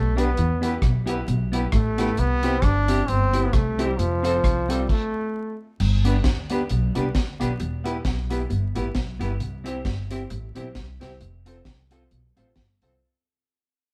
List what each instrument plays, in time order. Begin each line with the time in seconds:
Already playing: upright bass B1, trombone A3
0.16 clean electric guitar B3 D4 G4, upright piano B3 D4 G4 B4, trombone B3, closed hi-hat
0.37 upright bass E2, clean electric guitar E3, closed hi-hat
0.61 clean electric guitar B3 E4 G4, upright piano B3 E4 G4 B4, closed hi-hat
0.82 upright bass B1, clean electric guitar B2, kick, cross-stick, closed hi-hat
1.06 clean electric guitar B3 E4 G4, upright piano B3 E4 G4 B4, closed hi-hat
1.27 upright bass B1, clean electric guitar B2, muted clean electric guitar stroke, closed hi-hat
1.52 clean electric guitar B3 E4 G4, upright piano B3 E4 G4 B4, closed hi-hat
1.72 upright bass A1, clean electric guitar A2, trombone A3, kick, cross-stick, closed hi-hat
1.98 clean electric guitar B3 E4 G4, upright piano B3 E4 G4 B4, cross-stick, closed hi-hat
2.17 upright bass C2, clean electric guitar C3, trombone B3, closed hi-hat
2.43 upright piano C4 E4 G4 C5, clean electric guitar C4 E4 G4, closed hi-hat
2.62 upright bass G1, clean electric guitar G2, trombone D4, kick, cross-stick, closed hi-hat
2.88 upright piano C4 E4 G4 C5, clean electric guitar C4 E4 G4, closed hi-hat
3.07 upright bass G1, clean electric guitar G2, trombone C4, muted clean electric guitar stroke, closed hi-hat
3.33 clean electric guitar C4 E4 G4, upright piano C4 E4 G4 C5, closed hi-hat
3.44 trombone B3
3.53 upright bass C2, clean electric guitar C3, trombone A3, upright piano G4 C5, kick, cross-stick, closed hi-hat
3.78 upright piano C4 E4 G4 C5, clean electric guitar C4 E4 G4, closed hi-hat
3.88 trombone G3
3.98 upright bass F1, clean electric guitar F2, trombone F3, closed hi-hat
4.23 clean electric guitar C4 F4 A4, upright piano C4 F4 A4 C5, closed hi-hat
4.44 upright bass C2, clean electric guitar C3, kick, cross-stick, closed hi-hat
4.69 trombone G3, clean electric guitar C4 F4 A4, upright piano C4 F4 A4 C5, closed hi-hat
4.89 trombone A3, kick, crash
5.80 upright bass G1, clean electric guitar G2, crash
6.04 clean electric guitar B3 D4 G4, upright piano B3 D4 G4 B4, closed hi-hat
6.24 upright bass D2, clean electric guitar D3, kick, snare, closed hi-hat
6.50 upright piano B3 D4 G4 B4, clean electric guitar B3 D4 G4, closed hi-hat
6.70 upright bass B1, clean electric guitar B2, closed hi-hat
6.95 upright bass C2, clean electric guitar C3 B3 D4 G4, upright piano B3 D4 G4 B4, closed hi-hat
7.14 upright bass D2, clean electric guitar D3, upright piano G4 B4, kick, snare, closed hi-hat
7.40 upright bass B1, clean electric guitar B2 B3 D4 G4, upright piano B3 D4 G4 B4, closed hi-hat
7.60 upright bass E1, clean electric guitar E2, closed hi-hat
7.84 upright piano B3 E4 G4 B4, clean electric guitar B3 E4 G4, closed hi-hat
8.04 upright bass B1, clean electric guitar B2, kick, snare, closed hi-hat
8.30 upright piano B3 E4 G4 B4, clean electric guitar B3 E4 G4, closed hi-hat
8.50 upright bass G1, clean electric guitar G2, closed hi-hat
8.75 upright bass A1, clean electric guitar A2 B3 E4 G4, upright piano B3 E4 G4 B4, closed hi-hat
8.95 upright bass B1, clean electric guitar B2, upright piano G4 B4, kick, snare, closed hi-hat
9.19 upright bass G1, clean electric guitar G2 B3 E4 G4, upright piano B3 E4 G4 B4, closed hi-hat
9.40 upright bass C2, clean electric guitar C3, closed hi-hat
9.64 clean electric guitar C4 E4 G4, upright piano C4 E4 G4 C5, closed hi-hat
9.85 upright bass G1, clean electric guitar G2, kick, snare, closed hi-hat
10.10 clean electric guitar C4 E4 G4, upright piano C4 E4 G4 C5, closed hi-hat
10.30 upright bass A1, clean electric guitar A2, closed hi-hat
10.55 upright bass B1, clean electric guitar B2 C4 E4 G4, upright piano C4 E4 G4 C5, closed hi-hat
10.75 upright bass C2, clean electric guitar C3, kick, snare, closed hi-hat
11.00 upright bass C2, clean electric guitar C3 C4 E4 G4, upright piano C4 E4 G4 C5, snare, closed hi-hat
11.21 upright bass F1, clean electric guitar F2, closed hi-hat
11.46 clean electric guitar C4 F4 A4, upright piano C4 F4 A4 C5, closed hi-hat
11.65 upright bass C2, clean electric guitar C3, kick, snare, closed hi-hat
11.91 clean electric guitar C4 F4 A4, upright piano C4 F4 A4 C5, closed hi-hat
12.11 upright bass B1, clean electric guitar B2, closed hi-hat
12.37 upright bass A1, clean electric guitar A2 C4 F4 A4, upright piano C4 F4 A4 C5, closed hi-hat
12.56 upright bass G1, clean electric guitar G2, upright piano A4 C5, kick, snare, closed hi-hat
12.82 upright bass C2, clean electric guitar C3 C4 F4 A4, upright piano C4 F4 A4 C5, closed hi-hat